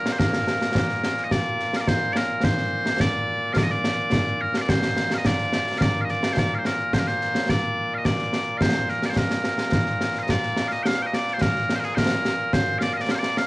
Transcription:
Already playing: A#2 A#3 A#4
0.06 snare
0.12 C5
0.19 A#4, concert bass drum, snare
0.33 snare
0.48 snare
0.62 snare
0.75 concert bass drum, snare
0.90 snare
1.04 snare
1.18 snare
1.24 D#5
1.31 D5, concert bass drum, snare
1.60 snare
1.73 F5, snare
1.80 D5
1.88 C5, concert bass drum, snare
2.13 A#4 D5, snare
2.44 C5, concert bass drum, snare
2.58 snare
2.86 snare
3.00 D5, concert bass drum, snare
3.53 F5, concert bass drum, snare
3.57 D5
3.63 D#5
3.70 D5, snare
3.84 snare
4.12 concert bass drum, snare
4.41 A#4
4.54 F5, snare
4.61 D5
4.69 C5, concert bass drum, snare
4.83 snare
4.97 snare
5.11 F5, snare
5.18 D#5
5.25 D5, concert bass drum, snare
5.39 snare
5.53 snare
5.67 snare
5.78 D5 F5, concert bass drum, snare
6.01 D#5 F5
6.09 D5, snare
6.23 snare
6.33 C5
6.37 D5, concert bass drum, snare
6.54 C5 F5
6.65 A#4, snare
6.93 C5, concert bass drum, snare
6.99 A#4
7.07 C5, snare
7.21 snare
7.35 snare
7.49 D5, concert bass drum, snare
7.94 D#5 F5
8.05 D5, concert bass drum, snare
8.19 snare
8.33 snare
8.58 F5, concert bass drum, snare
8.62 C5
8.89 A#4, snare
9.03 D5, snare
9.10 C5
9.16 A#4, concert bass drum, snare
9.30 snare
9.44 snare
9.58 snare
9.72 concert bass drum, snare
9.86 snare
10.01 snare
10.15 snare
10.19 D#5 F5
10.29 D5, concert bass drum, snare
10.43 snare
10.56 snare
10.68 F5, snare
10.72 D#5
10.83 F5 G5, snare
11.02 G5
11.06 D#5
11.13 D5, snare
11.28 snare
11.33 C5
11.41 A#4, concert bass drum, snare
11.56 snare
11.69 snare
11.75 C5
11.80 A#4, snare
11.84 G#4
11.95 A#4 C5, concert bass drum, snare
12.25 snare
12.53 C5, concert bass drum, snare
12.79 D5 F5, snare
12.93 D#5 F5
13.01 D5
13.09 F5, snare
13.15 C5
13.19 D5
13.23 snare
13.37 F5, snare

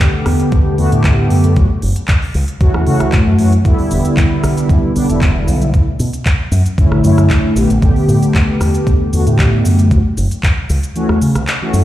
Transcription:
Already playing: D3 A3 B3 G4
0.00 kick, clap, closed hi-hat
0.26 E2, cross-stick, open hi-hat
0.40 closed hi-hat
0.52 E2, kick, closed hi-hat
0.77 E2 D3 A3 B3 F#4, open hi-hat
0.91 A2 D3 A3 B3 G4, closed hi-hat
1.04 kick, clap, closed hi-hat
1.30 F#2, open hi-hat
1.44 closed hi-hat
1.56 E3 A3 C#4 F#4, kick, closed hi-hat
1.82 F#1, open hi-hat
1.96 closed hi-hat
2.08 kick, clap, closed hi-hat
2.22 open hi-hat
2.34 C#2, open hi-hat
2.48 closed hi-hat
2.60 E3 A3 C#4 F#4, kick, closed hi-hat
2.74 E2, cross-stick
2.86 C#3 E3 A3 C#4 F#4, open hi-hat
3.00 C#2, cross-stick, closed hi-hat
3.12 A2, kick, clap, closed hi-hat
3.27 F#2
3.38 F#2 E3 A3 C#4 F#4, open hi-hat
3.52 closed hi-hat
3.64 E2 D3 G3 B3 E4, kick, closed hi-hat, cabasa
3.79 open hi-hat
3.91 E1, open hi-hat, cabasa
4.05 closed hi-hat, cabasa
4.17 kick, clap, closed hi-hat, cabasa
4.43 B1, cross-stick, open hi-hat, cabasa
4.57 closed hi-hat, cabasa
4.69 B1, kick, closed hi-hat, cabasa
4.95 B1 D3 G3 B3 D4, open hi-hat, cabasa
5.08 E1 D3 G3 B3 E4, closed hi-hat, cabasa
5.21 kick, clap, closed hi-hat, cabasa
5.47 B1, open hi-hat, cabasa
5.62 closed hi-hat, cabasa
5.74 D3 A3 C#4 E4, kick, closed hi-hat, cabasa
6.00 B2, open hi-hat, cabasa
6.13 closed hi-hat, cabasa
6.26 kick, clap, closed hi-hat, cabasa
6.51 F#2, open hi-hat, cabasa
6.66 closed hi-hat, cabasa
6.78 D3 A3 C#4 E4, kick, closed hi-hat, cabasa
6.91 A1, cross-stick
7.03 F#2 D3 A3 C#4 E4, open hi-hat, cabasa
7.18 F#2, cross-stick, closed hi-hat, cabasa
7.30 kick, clap, closed hi-hat, cabasa
7.56 A1 D3 A3 B3 G4, open hi-hat, cabasa
7.70 A1, closed hi-hat, cabasa
7.81 A1 D3 A3 B3 G4, kick, closed hi-hat, cabasa
7.96 open hi-hat
8.08 A2, open hi-hat, cabasa
8.23 closed hi-hat, cabasa
8.35 kick, clap, closed hi-hat, cabasa
8.61 E2, cross-stick, open hi-hat, cabasa
8.75 closed hi-hat, cabasa
8.87 E2, kick, closed hi-hat, cabasa
9.13 E2 D3 A3 B3 F#4, open hi-hat, cabasa
9.26 A2 D3 A3 B3 G4, closed hi-hat, cabasa
9.39 kick, clap, closed hi-hat, cabasa
9.65 F#2, open hi-hat, cabasa
9.79 closed hi-hat, cabasa
9.91 E3 A3 C#4 F#4, kick, closed hi-hat, cabasa
10.17 F#1, open hi-hat, cabasa
10.31 closed hi-hat, cabasa
10.43 kick, clap, closed hi-hat, cabasa
10.69 C#2, open hi-hat, cabasa
10.83 closed hi-hat, cabasa
10.95 E3 A3 C#4 F#4, closed hi-hat, cabasa
11.09 E2, cross-stick
11.22 C#3, open hi-hat, cabasa
11.35 C#2, cross-stick, closed hi-hat, cabasa
11.47 clap, closed hi-hat, cabasa
11.61 E3 A3 C#4 F#4
11.73 F#2, open hi-hat, cabasa

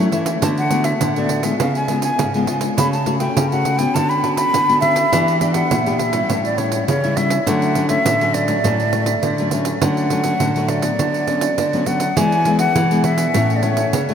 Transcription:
Already playing: E3
0.00 C#4 E4
0.12 E3 A3 C#4 E4, pandeiro
0.26 pandeiro
0.42 D3 A3 B3 F#4 A5, pandeiro
0.58 F#5, pandeiro
0.70 A3 B3 F#4, pandeiro
0.84 E5, pandeiro
1.01 A2 D3, pandeiro
1.16 A3 B3 F#4 D5, pandeiro
1.29 pandeiro
1.43 G#3 B3 F4 E5, pandeiro
1.60 C#3 F5, pandeiro
1.75 G#5, pandeiro
1.88 G#3 B3 F4, pandeiro
2.02 G#5, pandeiro
2.18 G#2 C#3, pandeiro
2.34 G#3 B3 F4, pandeiro
2.47 G#3 B3 F4, pandeiro
2.61 pandeiro
2.78 C#3 A3 C#4 F#4 B5, pandeiro
2.92 A5, pandeiro
3.06 A3 C#4 F#4, pandeiro
3.19 A3 C#4 F#4 G5, pandeiro
3.37 C#3, pandeiro
3.51 A3 C#4 F#4 F#5, pandeiro
3.65 pandeiro
3.78 B3 C#4 F#4 G5, pandeiro
3.94 D3 A5, pandeiro
4.09 B5, pandeiro
4.24 B3 C#4 F#4, pandeiro
4.35 B5, pandeiro
4.54 D3, pandeiro
4.69 B3 C#4 F#4, pandeiro
4.81 B3 C#4 F#4 E5, pandeiro
4.96 pandeiro
5.12 E3 B3 D4 G4, pandeiro
5.28 pandeiro
5.40 B3 D4 G4, pandeiro
5.53 B3 D4 G4 F#5, pandeiro
5.71 A#2, pandeiro
5.86 B3 D4 G4, pandeiro
5.99 E5, pandeiro
6.13 G3 C#4 E4, pandeiro
6.30 A2, pandeiro
6.45 D5, pandeiro
6.58 G3 C#4 E4 C#5, pandeiro
6.72 pandeiro
6.88 C#3 E3 C#5, pandeiro
7.04 G3 C#4 E4, pandeiro
7.17 G3 C#4 E4 E5, pandeiro
7.30 pandeiro
7.47 D3 F#3 A3 C#4 F#5, pandeiro
7.62 pandeiro
7.75 F#3 A3 C#4, pandeiro
7.89 F#3 A3 C#4 E5, pandeiro
8.05 A2 D3, pandeiro
8.21 F#3 A3 C#4, pandeiro
8.34 D5, pandeiro
8.48 F#3 A3 C#4, pandeiro
8.64 A2 D3 F#3 A3 C#4, pandeiro
8.80 pandeiro
8.93 F#3 A3, pandeiro
9.06 pandeiro
9.22 A2 D3, pandeiro
9.38 F#3 A3 C#4, pandeiro
9.51 F#3 A3 C#4, pandeiro
9.65 pandeiro
9.82 D3 F#3 A3 C#4 F#5, pandeiro
9.97 pandeiro
10.10 F#3 A3 C#4, pandeiro
10.24 F#3 A3 C#4, pandeiro
10.40 A2 D3, pandeiro
10.56 F#3 A3 C#4, pandeiro
10.68 D5, pandeiro
10.82 F#3 B3, pandeiro
10.99 D3, pandeiro
11.14 pandeiro
11.27 F#3 B3 C#4, pandeiro
11.41 pandeiro
11.58 D3, pandeiro
11.73 F#3 B3 C#4, pandeiro
11.86 F#3 B3 C#4 F#5, pandeiro
12.00 pandeiro
12.17 E3 G#3 B3 E4 G#5, pandeiro
12.32 pandeiro
12.45 G#3 B3 E4, pandeiro
12.59 F#5, pandeiro
12.75 B2 E3, pandeiro
12.91 G#3 B3 E4, pandeiro
13.04 E5, pandeiro
13.18 pandeiro
13.34 A2 A3 C#4 E4, pandeiro
13.50 pandeiro
13.56 D5
13.62 A3 C#4 E4 C#5, pandeiro
13.77 pandeiro
13.93 C#3 E3, pandeiro
14.09 A3 C#4 E4, pandeiro

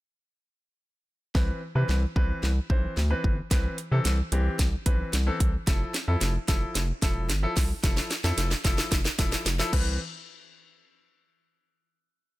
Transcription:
1.35 C2 E3 C4 B4, kick, snare
1.75 C3 E3 C4 B4
1.89 C2, snare
2.16 C2 E3 C4 B4, kick
2.43 C2, snare
2.70 B1 E3 C4 C5, kick
2.97 D2, snare
3.10 E3 C4 B4
3.24 G1, kick
3.51 C2 E3 C4 B4, kick, snare, closed hi-hat
3.78 closed hi-hat
3.91 C3 E3 C4 A4
4.05 C2, snare, closed hi-hat
4.32 C2 E3 C4 G4, closed hi-hat
4.59 C2, kick, snare, closed hi-hat
4.86 B1 E3 C4 B4, kick, closed hi-hat
5.13 C2, snare, closed hi-hat
5.27 E3 C4 A4
5.40 C2, kick, closed hi-hat
5.67 F1 F3 E4 A4, kick, snare, closed hi-hat
5.94 snare, closed hi-hat
6.08 F2 F3 E4 A4
6.21 F1, snare, closed hi-hat
6.48 F1 F3 E4 A4, kick, snare, closed hi-hat
6.75 F1, snare, closed hi-hat
7.02 E1 F3 E4 A4, kick, snare, closed hi-hat
7.29 G1, snare, closed hi-hat
7.43 F3 E4 A4
7.57 C2, kick, snare, open hi-hat
7.83 F1 F3 E4 A4, kick, snare, closed hi-hat
7.97 snare
8.11 snare, closed hi-hat
8.24 F2 F3 E4 A4, snare
8.38 F1, snare, closed hi-hat
8.51 snare
8.64 F1 F3 E4 A4, kick, snare, closed hi-hat
8.78 snare
8.92 F1, kick, snare, closed hi-hat
9.05 snare
9.18 E1 F3 E4 A4, kick, snare, closed hi-hat
9.32 snare
9.46 F1, snare, closed hi-hat
9.59 F3 E4 A4, snare
9.73 C2 E3 C4 B4, kick, crash

